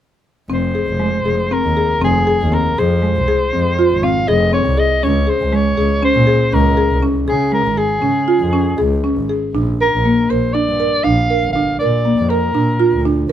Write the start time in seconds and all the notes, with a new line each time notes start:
0.49 F1 C4
0.53 C5
0.75 G#4
0.87 F1
1.00 G#3
1.25 F1 G#4
1.51 C4 A#4
1.64 D#2
1.77 G#4
2.01 F1 C4 G#4
2.27 G#4
2.41 D#2
2.52 C4 A#4
2.78 F2 G#4 C5
3.02 G#3
3.15 C2
3.28 G#4
3.53 F2 C4
3.79 F4
3.91 G#1
4.03 C4 F5
4.28 F1 G#4 D#5
4.53 C4 C#5
4.66 C2
4.77 G#4 D#5
5.03 C#2 C#4 C#5
5.27 G#4 C5
5.40 C#2
5.53 G#3 C#5
5.77 C#2 G#4
6.03 C#4 C5
6.14 A#2
6.27 G#4
6.52 C#2 C#4 A#4
6.77 G#4
6.90 C2
7.02 C#4
7.28 C#3 G#4
7.52 G#3 A#4
7.65 G#1
7.78 G#4
8.02 C#3 C#4
8.28 F4
8.40 F2
8.53 C#4
8.78 C#2 G#4
9.04 C#4
9.16 G#1
9.29 G#4
9.54 A#1 D4
9.81 A#4
9.93 A#1
10.05 A#3
10.30 A#1 A#4 C5
10.53 D4 D5
10.68 G2
10.80 A#4
11.04 A#1 D4 F5
11.30 A#4
11.43 G1
11.53 D4 F5
11.79 A#2 A#4 D5
12.05 A#3
12.17 F2
12.29 A#4
12.54 A#2 D4
12.80 F4
12.92 D2
13.05 D4